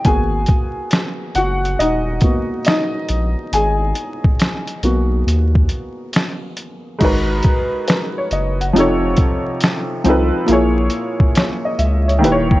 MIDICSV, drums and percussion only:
0, 0, Header, 1, 2, 480
1, 0, Start_track
1, 0, Key_signature, 5, "minor"
1, 0, Tempo, 869565
1, 28, Time_signature, 4, 2, 24, 8
1, 6955, End_track
2, 0, Start_track
2, 0, Title_t, "Drums"
2, 26, Note_on_c, 9, 42, 88
2, 27, Note_on_c, 9, 36, 111
2, 81, Note_off_c, 9, 42, 0
2, 83, Note_off_c, 9, 36, 0
2, 255, Note_on_c, 9, 42, 49
2, 268, Note_on_c, 9, 36, 81
2, 310, Note_off_c, 9, 42, 0
2, 323, Note_off_c, 9, 36, 0
2, 501, Note_on_c, 9, 42, 81
2, 513, Note_on_c, 9, 26, 78
2, 513, Note_on_c, 9, 38, 99
2, 556, Note_off_c, 9, 42, 0
2, 568, Note_off_c, 9, 38, 0
2, 569, Note_off_c, 9, 26, 0
2, 744, Note_on_c, 9, 42, 58
2, 800, Note_off_c, 9, 42, 0
2, 911, Note_on_c, 9, 42, 37
2, 966, Note_off_c, 9, 42, 0
2, 995, Note_on_c, 9, 42, 74
2, 1050, Note_off_c, 9, 42, 0
2, 1218, Note_on_c, 9, 42, 52
2, 1224, Note_on_c, 9, 36, 82
2, 1273, Note_off_c, 9, 42, 0
2, 1279, Note_off_c, 9, 36, 0
2, 1461, Note_on_c, 9, 42, 69
2, 1478, Note_on_c, 9, 38, 96
2, 1479, Note_on_c, 9, 26, 78
2, 1516, Note_off_c, 9, 42, 0
2, 1534, Note_off_c, 9, 26, 0
2, 1534, Note_off_c, 9, 38, 0
2, 1703, Note_on_c, 9, 42, 61
2, 1759, Note_off_c, 9, 42, 0
2, 1948, Note_on_c, 9, 42, 89
2, 2003, Note_off_c, 9, 42, 0
2, 2182, Note_on_c, 9, 42, 50
2, 2237, Note_off_c, 9, 42, 0
2, 2342, Note_on_c, 9, 36, 83
2, 2398, Note_off_c, 9, 36, 0
2, 2426, Note_on_c, 9, 42, 83
2, 2438, Note_on_c, 9, 26, 80
2, 2438, Note_on_c, 9, 38, 95
2, 2481, Note_off_c, 9, 42, 0
2, 2493, Note_off_c, 9, 26, 0
2, 2493, Note_off_c, 9, 38, 0
2, 2580, Note_on_c, 9, 42, 37
2, 2636, Note_off_c, 9, 42, 0
2, 2666, Note_on_c, 9, 42, 55
2, 2722, Note_off_c, 9, 42, 0
2, 2915, Note_on_c, 9, 42, 75
2, 2970, Note_off_c, 9, 42, 0
2, 3065, Note_on_c, 9, 36, 90
2, 3120, Note_off_c, 9, 36, 0
2, 3140, Note_on_c, 9, 42, 51
2, 3196, Note_off_c, 9, 42, 0
2, 3384, Note_on_c, 9, 42, 72
2, 3402, Note_on_c, 9, 26, 81
2, 3402, Note_on_c, 9, 38, 102
2, 3439, Note_off_c, 9, 42, 0
2, 3457, Note_off_c, 9, 26, 0
2, 3457, Note_off_c, 9, 38, 0
2, 3625, Note_on_c, 9, 42, 59
2, 3681, Note_off_c, 9, 42, 0
2, 3868, Note_on_c, 9, 42, 91
2, 3869, Note_on_c, 9, 36, 108
2, 3869, Note_on_c, 9, 49, 94
2, 3923, Note_off_c, 9, 42, 0
2, 3924, Note_off_c, 9, 36, 0
2, 3924, Note_off_c, 9, 49, 0
2, 4099, Note_on_c, 9, 42, 53
2, 4110, Note_on_c, 9, 36, 81
2, 4154, Note_off_c, 9, 42, 0
2, 4165, Note_off_c, 9, 36, 0
2, 4347, Note_on_c, 9, 42, 83
2, 4360, Note_on_c, 9, 26, 82
2, 4360, Note_on_c, 9, 38, 99
2, 4403, Note_off_c, 9, 42, 0
2, 4415, Note_off_c, 9, 26, 0
2, 4415, Note_off_c, 9, 38, 0
2, 4587, Note_on_c, 9, 42, 55
2, 4642, Note_off_c, 9, 42, 0
2, 4753, Note_on_c, 9, 42, 37
2, 4809, Note_off_c, 9, 42, 0
2, 4837, Note_on_c, 9, 42, 78
2, 4892, Note_off_c, 9, 42, 0
2, 5059, Note_on_c, 9, 42, 55
2, 5066, Note_on_c, 9, 36, 87
2, 5115, Note_off_c, 9, 42, 0
2, 5121, Note_off_c, 9, 36, 0
2, 5302, Note_on_c, 9, 42, 77
2, 5319, Note_on_c, 9, 38, 100
2, 5320, Note_on_c, 9, 26, 81
2, 5357, Note_off_c, 9, 42, 0
2, 5375, Note_off_c, 9, 26, 0
2, 5375, Note_off_c, 9, 38, 0
2, 5545, Note_on_c, 9, 42, 62
2, 5600, Note_off_c, 9, 42, 0
2, 5785, Note_on_c, 9, 42, 88
2, 5840, Note_off_c, 9, 42, 0
2, 6016, Note_on_c, 9, 42, 54
2, 6071, Note_off_c, 9, 42, 0
2, 6182, Note_on_c, 9, 36, 83
2, 6237, Note_off_c, 9, 36, 0
2, 6266, Note_on_c, 9, 42, 91
2, 6279, Note_on_c, 9, 26, 83
2, 6279, Note_on_c, 9, 38, 102
2, 6322, Note_off_c, 9, 42, 0
2, 6334, Note_off_c, 9, 26, 0
2, 6334, Note_off_c, 9, 38, 0
2, 6507, Note_on_c, 9, 42, 57
2, 6563, Note_off_c, 9, 42, 0
2, 6676, Note_on_c, 9, 42, 37
2, 6731, Note_off_c, 9, 42, 0
2, 6757, Note_on_c, 9, 42, 76
2, 6812, Note_off_c, 9, 42, 0
2, 6906, Note_on_c, 9, 36, 88
2, 6955, Note_off_c, 9, 36, 0
2, 6955, End_track
0, 0, End_of_file